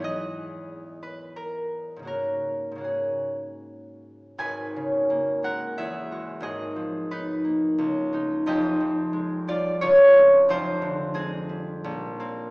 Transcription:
0.00 2.07 E2 medium
0.00 2.08 E3 soft
0.00 3.89 B3 soft
0.00 2.83 G#4 soft
0.04 3.94 D#5 loud
1.03 4.39 B4 medium
1.36 2.06 A#4 medium
1.96 2.70 G#2 soft
1.96 2.74 C#3 soft
2.03 2.77 A#3 soft
2.03 2.80 F#4 soft
2.07 5.44 A#4 medium
2.72 4.38 G#2 soft
2.72 4.40 C#3 soft
2.78 5.09 A#3 soft
2.78 6.11 F#4 soft
2.84 5.78 G#4 soft
4.38 5.81 G#1 medium
4.38 5.82 G#2 medium
4.38 7.10 B4 medium
4.38 8.29 G#5 loud
4.76 5.82 C#3 soft
5.10 5.82 A#3 medium
5.43 6.02 G#3 soft
5.43 5.82 A#4 medium
5.43 6.49 F#5 medium
5.78 6.49 E2 medium
5.78 6.42 G#4 medium
5.78 6.48 E5 medium
6.11 8.12 G#3 soft
6.11 6.49 F#4 medium
6.40 7.81 G#1 medium
6.40 7.82 G#2 medium
6.40 10.33 G#4 medium
6.40 8.46 D#5 medium
6.76 7.82 F3 medium
7.11 8.49 B3 medium
7.11 8.13 D#4 medium
7.11 8.49 B4 medium
7.45 8.03 A#3 soft
7.78 8.49 C#2 medium
8.13 9.12 G#3 soft
8.13 10.50 D#4 medium
8.46 9.83 F1 medium
8.46 9.83 F2 medium
8.46 9.84 G4 medium
8.46 10.50 D#5 loud
8.81 12.51 F3 medium
9.13 10.13 G#3 medium
9.48 10.04 G3 soft
9.48 9.81 F4 medium
9.48 10.04 D5 loud
9.81 10.51 C#2 medium
9.81 10.49 F4 medium
9.81 10.51 C#5 loud
10.14 11.13 G#3 medium
10.14 11.14 C4 medium
10.49 11.86 F1 medium
10.49 11.86 F2 medium
10.49 12.51 F4 medium
10.49 12.51 C5 loud
10.82 11.86 D3 medium
11.14 12.51 G#3 medium
11.14 12.19 C4 medium
11.14 12.51 G#4 medium
11.49 12.08 G3 soft
11.84 12.51 A#1 medium
12.20 12.51 A#3 medium
12.20 12.51 C4 medium

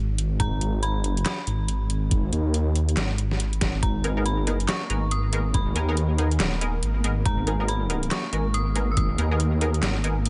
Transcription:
0.00 0.38 G#1 loud
0.18 closed hi-hat medium
0.40 1.00 G#1 loud
0.40 0.80 A#5 loud
0.40 kick loud
0.40 closed hi-hat medium
0.61 closed hi-hat medium
0.83 1.23 B5 loud
0.83 closed hi-hat medium
1.00 1.24 G1 loud
1.04 closed hi-hat medium
1.17 closed hi-hat soft
1.25 3.36 B5 loud
1.25 snare loud
1.25 clap medium
1.25 closed hi-hat medium
1.47 2.31 G#1 loud
1.47 closed hi-hat medium
1.68 closed hi-hat medium
1.90 closed hi-hat medium
2.11 kick loud
2.11 closed hi-hat medium
2.33 2.96 D#2 loud
2.33 closed hi-hat medium
2.54 closed hi-hat medium
2.76 closed hi-hat medium
2.89 closed hi-hat soft
2.97 3.60 G#1 loud
2.97 snare loud
2.97 clap medium
2.97 closed hi-hat medium
3.18 closed hi-hat medium
3.31 snare soft
3.40 closed hi-hat medium
3.53 closed hi-hat soft
3.61 3.81 G#1 loud
3.61 kick medium
3.61 snare loud
3.61 closed hi-hat medium
3.83 4.43 G#1 loud
3.83 10.29 A#3 medium
3.83 4.27 A#5 medium
3.83 kick loud
3.83 closed hi-hat medium
4.04 4.14 B3 medium
4.04 4.14 D#4 medium
4.04 4.14 G#4 medium
4.04 4.14 A#4 medium
4.04 closed hi-hat medium
4.17 4.24 B3 medium
4.17 4.24 D#4 medium
4.17 4.24 G#4 medium
4.17 4.24 A#4 medium
4.26 4.65 B5 medium
4.26 closed hi-hat medium
4.43 4.67 G1 loud
4.47 4.58 B3 medium
4.47 4.58 D#4 medium
4.47 4.58 G#4 medium
4.47 4.58 A#4 medium
4.47 closed hi-hat medium
4.60 closed hi-hat soft
4.68 5.13 C#6 loud
4.68 snare loud
4.68 clap medium
4.68 closed hi-hat medium
4.90 5.74 G#1 loud
4.90 5.01 B3 medium
4.90 5.01 D#4 medium
4.90 5.01 G#4 medium
4.90 5.01 A#4 medium
4.90 closed hi-hat medium
5.11 5.51 D#6 loud
5.11 closed hi-hat medium
5.33 5.44 B3 medium
5.33 5.44 D#4 medium
5.33 5.44 G#4 medium
5.33 5.44 A#4 medium
5.33 closed hi-hat medium
5.54 6.79 B5 medium
5.54 kick loud
5.54 closed hi-hat medium
5.75 6.38 D#2 loud
5.75 5.85 B3 medium
5.75 5.85 D#4 medium
5.75 5.85 G#4 medium
5.75 5.85 A#4 medium
5.75 closed hi-hat medium
5.89 5.96 B3 medium
5.89 5.96 D#4 medium
5.89 5.96 G#4 medium
5.89 5.96 A#4 medium
5.97 closed hi-hat medium
6.18 6.29 B3 medium
6.18 6.29 D#4 medium
6.18 6.29 G#4 medium
6.18 6.29 A#4 medium
6.18 closed hi-hat medium
6.31 closed hi-hat soft
6.40 6.81 D#1 loud
6.40 snare loud
6.40 clap medium
6.40 closed hi-hat medium
6.61 6.72 B3 medium
6.61 6.72 D#4 medium
6.61 6.72 G#4 medium
6.61 6.72 A#4 medium
6.61 closed hi-hat medium
6.83 7.24 G#1 loud
6.83 closed hi-hat medium
7.04 7.15 B3 medium
7.04 7.15 D#4 medium
7.04 7.15 G#4 medium
7.04 7.15 A#4 medium
7.04 closed hi-hat medium
7.25 8.10 G#1 medium
7.25 7.70 A#5 medium
7.25 kick loud
7.25 closed hi-hat medium
7.47 7.57 B3 medium
7.47 7.57 D#4 medium
7.47 7.57 G#4 medium
7.47 7.57 A#4 medium
7.47 closed hi-hat soft
7.60 7.67 B3 medium
7.60 7.67 D#4 medium
7.60 7.67 G#4 medium
7.60 7.67 A#4 medium
7.68 8.08 B5 medium
7.68 closed hi-hat medium
7.90 8.01 B3 medium
7.90 8.01 D#4 medium
7.90 8.01 G#4 medium
7.90 8.01 A#4 medium
7.90 closed hi-hat medium
8.03 closed hi-hat soft
8.11 8.55 C#6 loud
8.11 snare loud
8.11 clap medium
8.11 closed hi-hat medium
8.33 9.17 G#1 loud
8.33 8.44 B3 medium
8.33 8.44 D#4 medium
8.33 8.44 G#4 medium
8.33 8.44 A#4 medium
8.33 closed hi-hat medium
8.54 8.93 D#6 loud
8.54 closed hi-hat medium
8.75 8.87 B3 medium
8.75 8.87 D#4 medium
8.75 8.87 G#4 medium
8.75 8.87 A#4 medium
8.75 closed hi-hat medium
8.92 8.97 E6 medium
8.97 9.79 D#6 loud
8.97 kick loud
8.97 closed hi-hat medium
9.18 9.81 D#2 loud
9.18 9.28 B3 medium
9.18 9.28 D#4 medium
9.18 9.28 G#4 medium
9.18 9.28 A#4 medium
9.18 closed hi-hat medium
9.31 9.38 B3 medium
9.31 9.38 D#4 medium
9.31 9.38 G#4 medium
9.31 9.38 A#4 medium
9.40 closed hi-hat medium
9.61 9.72 B3 medium
9.61 9.72 D#4 medium
9.61 9.72 G#4 medium
9.61 9.72 A#4 medium
9.61 closed hi-hat medium
9.74 closed hi-hat soft
9.83 10.29 G#1 loud
9.83 snare loud
9.83 clap medium
9.83 closed hi-hat medium
10.04 10.15 B3 medium
10.04 10.15 D#4 medium
10.04 10.15 G#4 medium
10.04 10.15 A#4 medium
10.04 closed hi-hat medium
10.26 closed hi-hat medium

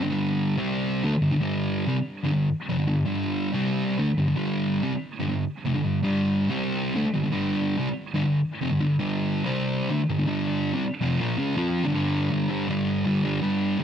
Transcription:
0.02 0.10 G2 medium
0.02 0.11 D3 loud
0.12 0.57 G2 medium
0.12 0.57 D3 loud
0.12 0.56 G3 loud
0.57 1.03 C3 loud
0.57 1.03 G3 loud
0.57 1.03 C4 medium
1.04 1.12 D3 loud
1.04 1.13 A3 medium
1.13 muted distorted electric guitar stroke medium
1.22 1.30 G2 medium
1.22 1.31 D3 medium
1.31 1.39 G2 medium
1.31 1.40 D3 medium
1.40 1.86 G2 medium
1.40 1.86 D3 medium
1.40 1.86 G3 loud
1.87 1.95 C3 medium
1.87 1.96 G3 loud
1.97 muted distorted electric guitar stroke medium
2.23 2.32 G2 medium
2.23 2.32 D3 loud
2.33 2.48 G2 medium
2.33 2.48 D3 medium
2.69 2.78 F2 loud
2.69 2.79 C3 loud
2.79 2.86 G2 medium
2.79 2.87 D3 medium
2.88 3.03 G2 medium
2.88 3.03 D3 medium
3.05 3.52 G2 loud
3.05 3.52 D3 loud
3.05 3.53 G3 loud
3.53 3.98 C3 medium
3.53 3.99 G3 loud
3.53 4.00 C4 loud
3.99 4.08 D3 medium
3.99 4.08 A3 loud
4.08 muted distorted electric guitar stroke medium
4.18 4.26 G2 medium
4.18 4.27 D3 medium
4.27 4.35 G2 medium
4.27 4.36 D3 medium
4.36 4.82 G2 medium
4.36 4.82 D3 loud
4.36 4.83 G3 medium
4.83 4.92 C3 loud
4.83 4.92 G3 loud
4.92 muted distorted electric guitar stroke medium
5.20 5.27 G2 loud
5.20 5.27 D3 loud
5.28 5.44 G2 medium
5.28 5.44 D3 medium
5.66 5.75 F2 medium
5.66 5.75 C3 loud
5.75 5.84 G2 medium
5.75 5.84 D3 medium
5.85 6.00 G2 medium
5.85 6.00 D3 medium
6.04 6.49 G2 medium
6.04 6.48 D3 loud
6.04 6.49 G3 loud
6.49 6.95 C3 medium
6.49 6.96 G3 loud
6.49 6.96 C4 loud
6.95 7.04 D3 medium
6.95 7.05 A3 loud
7.04 muted distorted electric guitar stroke medium
7.13 7.21 G2 medium
7.13 7.22 D3 medium
7.23 7.30 G2 medium
7.23 7.31 D3 medium
7.31 7.78 G2 loud
7.31 7.77 D3 medium
7.31 7.78 G3 medium
7.78 7.87 C3 loud
7.78 7.88 G3 loud
7.88 muted distorted electric guitar stroke medium
8.14 8.23 G2 medium
8.14 8.23 D3 loud
8.24 8.40 G2 medium
8.24 8.40 D3 medium
8.61 8.71 F2 medium
8.61 8.71 C3 loud
8.71 8.79 G2 medium
8.71 8.80 D3 medium
8.81 8.96 G2 medium
8.81 8.96 D3 medium
8.99 9.45 G2 medium
8.99 9.44 D3 loud
8.99 9.45 G3 loud
9.44 9.90 C3 loud
9.44 9.91 G3 loud
9.44 9.91 C4 loud
9.90 10.00 D3 loud
9.90 10.00 A3 medium
10.00 muted distorted electric guitar stroke medium
10.10 10.17 G2 medium
10.10 10.18 D3 medium
10.18 10.25 G2 medium
10.18 10.26 D3 medium
10.26 10.73 G2 medium
10.26 10.73 D3 loud
10.26 10.74 G3 loud
10.74 10.83 C3 loud
10.74 10.84 G3 loud
10.83 muted distorted electric guitar stroke medium
11.01 11.19 F2 loud
11.01 11.19 C3 loud
11.01 11.20 F3 loud
11.20 11.37 A#2 loud
11.20 11.38 F3 loud
11.20 11.38 A#3 loud
11.37 11.56 C#3 medium
11.37 11.56 G#3 loud
11.37 11.57 C#4 loud
11.56 11.84 F3 loud
11.56 11.84 C4 loud
11.56 11.85 F4 loud
11.84 11.93 G2 loud
11.84 11.93 D3 loud
11.94 12.30 G2 loud
11.94 12.31 D3 loud
11.94 12.32 G3 loud
12.30 12.47 G2 medium
12.30 12.48 D3 loud
12.30 12.49 G3 loud
12.49 12.67 G2 medium
12.49 12.67 D3 medium
12.49 12.68 G3 medium
12.68 13.04 G2 loud
12.68 13.05 D3 medium
12.68 13.06 G3 loud
13.05 13.22 G2 medium
13.05 13.23 D3 medium
13.05 13.24 G3 loud
13.23 13.40 G2 medium
13.23 13.41 D3 medium
13.23 13.42 G3 medium
13.41 13.78 G2 loud
13.41 13.78 D3 loud
13.41 13.79 G3 loud
13.79 13.84 G2 medium
13.79 13.84 D3 medium
13.79 13.84 G3 loud

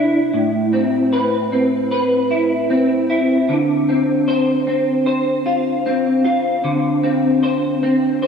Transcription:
0.00 0.33 C3 medium
0.00 0.41 D4 medium
0.00 2.30 E4 medium
0.00 1.12 C5 medium
0.33 3.49 A2 medium
0.73 1.52 C4 medium
1.13 1.90 B4 medium
1.52 2.70 C4 medium
1.91 3.57 B4 medium
2.31 3.08 E4 medium
2.70 3.88 C4 medium
3.10 3.57 E4 medium
3.49 6.64 D3 medium
3.89 4.67 C4 medium
4.28 5.06 C5 medium
4.67 5.86 C4 medium
5.06 7.43 C5 medium
5.46 6.23 F4 medium
5.86 7.03 C4 medium
6.24 8.27 F4 medium
6.64 8.27 D3 medium
7.03 7.83 C4 soft
7.43 8.22 C5 medium
7.83 8.27 C4 medium
8.22 8.27 C5 medium

